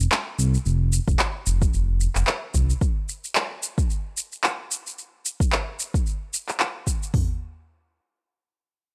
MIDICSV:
0, 0, Header, 1, 3, 480
1, 0, Start_track
1, 0, Tempo, 540541
1, 579, Time_signature, 4, 2, 24, 8
1, 7939, End_track
2, 0, Start_track
2, 0, Title_t, "Analog synth bass"
2, 0, Program_c, 0, 38
2, 342, Note_on_c, 0, 36, 95
2, 510, Note_off_c, 0, 36, 0
2, 583, Note_on_c, 0, 29, 93
2, 883, Note_off_c, 0, 29, 0
2, 956, Note_on_c, 0, 29, 79
2, 1024, Note_off_c, 0, 29, 0
2, 1303, Note_on_c, 0, 29, 89
2, 1471, Note_off_c, 0, 29, 0
2, 1542, Note_on_c, 0, 29, 94
2, 1843, Note_off_c, 0, 29, 0
2, 1917, Note_on_c, 0, 29, 86
2, 1985, Note_off_c, 0, 29, 0
2, 2259, Note_on_c, 0, 36, 97
2, 2429, Note_off_c, 0, 36, 0
2, 7939, End_track
3, 0, Start_track
3, 0, Title_t, "Drums"
3, 4, Note_on_c, 9, 82, 43
3, 93, Note_off_c, 9, 82, 0
3, 104, Note_on_c, 9, 39, 98
3, 108, Note_on_c, 9, 82, 31
3, 193, Note_off_c, 9, 39, 0
3, 197, Note_off_c, 9, 82, 0
3, 347, Note_on_c, 9, 82, 75
3, 436, Note_off_c, 9, 82, 0
3, 482, Note_on_c, 9, 82, 45
3, 571, Note_off_c, 9, 82, 0
3, 585, Note_on_c, 9, 82, 35
3, 674, Note_off_c, 9, 82, 0
3, 823, Note_on_c, 9, 82, 76
3, 912, Note_off_c, 9, 82, 0
3, 956, Note_on_c, 9, 36, 107
3, 960, Note_on_c, 9, 82, 44
3, 1044, Note_off_c, 9, 36, 0
3, 1049, Note_off_c, 9, 82, 0
3, 1058, Note_on_c, 9, 39, 97
3, 1062, Note_on_c, 9, 82, 31
3, 1147, Note_off_c, 9, 39, 0
3, 1151, Note_off_c, 9, 82, 0
3, 1301, Note_on_c, 9, 82, 79
3, 1390, Note_off_c, 9, 82, 0
3, 1436, Note_on_c, 9, 36, 104
3, 1437, Note_on_c, 9, 82, 45
3, 1524, Note_off_c, 9, 36, 0
3, 1526, Note_off_c, 9, 82, 0
3, 1542, Note_on_c, 9, 82, 33
3, 1631, Note_off_c, 9, 82, 0
3, 1780, Note_on_c, 9, 82, 75
3, 1869, Note_off_c, 9, 82, 0
3, 1913, Note_on_c, 9, 39, 30
3, 1916, Note_on_c, 9, 82, 45
3, 2001, Note_off_c, 9, 39, 0
3, 2005, Note_off_c, 9, 82, 0
3, 2017, Note_on_c, 9, 39, 89
3, 2020, Note_on_c, 9, 82, 30
3, 2105, Note_off_c, 9, 39, 0
3, 2109, Note_off_c, 9, 82, 0
3, 2259, Note_on_c, 9, 36, 56
3, 2260, Note_on_c, 9, 82, 75
3, 2348, Note_off_c, 9, 36, 0
3, 2349, Note_off_c, 9, 82, 0
3, 2396, Note_on_c, 9, 82, 43
3, 2485, Note_off_c, 9, 82, 0
3, 2498, Note_on_c, 9, 36, 107
3, 2501, Note_on_c, 9, 82, 34
3, 2587, Note_off_c, 9, 36, 0
3, 2590, Note_off_c, 9, 82, 0
3, 2742, Note_on_c, 9, 82, 74
3, 2831, Note_off_c, 9, 82, 0
3, 2880, Note_on_c, 9, 82, 40
3, 2969, Note_off_c, 9, 82, 0
3, 2978, Note_on_c, 9, 39, 95
3, 2982, Note_on_c, 9, 82, 32
3, 3067, Note_off_c, 9, 39, 0
3, 3071, Note_off_c, 9, 82, 0
3, 3222, Note_on_c, 9, 82, 78
3, 3311, Note_off_c, 9, 82, 0
3, 3355, Note_on_c, 9, 36, 102
3, 3360, Note_on_c, 9, 82, 42
3, 3444, Note_off_c, 9, 36, 0
3, 3449, Note_off_c, 9, 82, 0
3, 3466, Note_on_c, 9, 82, 33
3, 3555, Note_off_c, 9, 82, 0
3, 3706, Note_on_c, 9, 82, 77
3, 3795, Note_off_c, 9, 82, 0
3, 3840, Note_on_c, 9, 82, 43
3, 3929, Note_off_c, 9, 82, 0
3, 3940, Note_on_c, 9, 39, 90
3, 3944, Note_on_c, 9, 82, 30
3, 4029, Note_off_c, 9, 39, 0
3, 4033, Note_off_c, 9, 82, 0
3, 4185, Note_on_c, 9, 82, 77
3, 4274, Note_off_c, 9, 82, 0
3, 4323, Note_on_c, 9, 82, 42
3, 4411, Note_off_c, 9, 82, 0
3, 4426, Note_on_c, 9, 82, 32
3, 4515, Note_off_c, 9, 82, 0
3, 4667, Note_on_c, 9, 82, 75
3, 4756, Note_off_c, 9, 82, 0
3, 4797, Note_on_c, 9, 36, 98
3, 4805, Note_on_c, 9, 82, 43
3, 4886, Note_off_c, 9, 36, 0
3, 4894, Note_off_c, 9, 82, 0
3, 4906, Note_on_c, 9, 39, 81
3, 4910, Note_on_c, 9, 82, 32
3, 4995, Note_off_c, 9, 39, 0
3, 4998, Note_off_c, 9, 82, 0
3, 5147, Note_on_c, 9, 82, 73
3, 5236, Note_off_c, 9, 82, 0
3, 5277, Note_on_c, 9, 36, 94
3, 5284, Note_on_c, 9, 82, 39
3, 5366, Note_off_c, 9, 36, 0
3, 5372, Note_off_c, 9, 82, 0
3, 5386, Note_on_c, 9, 82, 31
3, 5475, Note_off_c, 9, 82, 0
3, 5627, Note_on_c, 9, 82, 76
3, 5716, Note_off_c, 9, 82, 0
3, 5759, Note_on_c, 9, 39, 28
3, 5763, Note_on_c, 9, 82, 44
3, 5848, Note_off_c, 9, 39, 0
3, 5852, Note_off_c, 9, 82, 0
3, 5859, Note_on_c, 9, 39, 83
3, 5863, Note_on_c, 9, 82, 29
3, 5948, Note_off_c, 9, 39, 0
3, 5952, Note_off_c, 9, 82, 0
3, 6099, Note_on_c, 9, 36, 55
3, 6103, Note_on_c, 9, 82, 75
3, 6188, Note_off_c, 9, 36, 0
3, 6192, Note_off_c, 9, 82, 0
3, 6241, Note_on_c, 9, 82, 41
3, 6330, Note_off_c, 9, 82, 0
3, 6338, Note_on_c, 9, 43, 90
3, 6338, Note_on_c, 9, 46, 74
3, 6339, Note_on_c, 9, 36, 85
3, 6427, Note_off_c, 9, 43, 0
3, 6427, Note_off_c, 9, 46, 0
3, 6428, Note_off_c, 9, 36, 0
3, 7939, End_track
0, 0, End_of_file